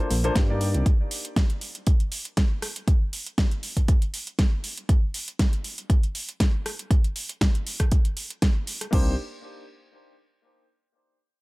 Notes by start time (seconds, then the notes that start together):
0.10 A#1, open hi-hat
0.24 A#3 D4 F4 A4 C5, closed hi-hat
0.35 G2, kick, snare, closed hi-hat
0.49 A#3 D4 D#4 G4 D5
0.61 open hi-hat
0.74 C2, closed hi-hat
0.86 kick, closed hi-hat
1.11 open hi-hat
1.25 closed hi-hat
1.36 kick, snare, closed hi-hat
1.50 closed hi-hat
1.61 open hi-hat
1.75 closed hi-hat
1.87 kick, closed hi-hat
2.00 closed hi-hat
2.12 open hi-hat
2.25 closed hi-hat
2.37 kick, snare, closed hi-hat
2.62 cross-stick, open hi-hat
2.76 closed hi-hat
2.88 kick, closed hi-hat
3.13 open hi-hat
3.26 closed hi-hat
3.38 kick, snare, closed hi-hat
3.51 closed hi-hat
3.63 open hi-hat
3.77 kick, closed hi-hat
3.88 kick, closed hi-hat
4.02 closed hi-hat
4.14 open hi-hat
4.27 closed hi-hat
4.39 kick, snare, closed hi-hat
4.64 open hi-hat
4.78 closed hi-hat
4.89 kick, closed hi-hat
5.14 open hi-hat
5.28 closed hi-hat
5.39 kick, snare, closed hi-hat
5.53 closed hi-hat
5.64 open hi-hat
5.78 closed hi-hat
5.90 kick, closed hi-hat
6.03 closed hi-hat
6.15 open hi-hat
6.29 closed hi-hat
6.40 kick, snare, closed hi-hat
6.66 cross-stick, open hi-hat
6.79 closed hi-hat
6.91 kick, closed hi-hat
7.04 closed hi-hat
7.16 open hi-hat
7.29 closed hi-hat
7.41 kick, snare, closed hi-hat
7.55 closed hi-hat
7.67 open hi-hat
7.80 kick, cross-stick, closed hi-hat
7.92 kick, closed hi-hat
8.05 closed hi-hat
8.17 open hi-hat
8.30 closed hi-hat
8.42 kick, snare, closed hi-hat
8.67 open hi-hat
8.81 cross-stick, closed hi-hat
8.91 C2 A#3 D4 D#4 G4 C5, kick, crash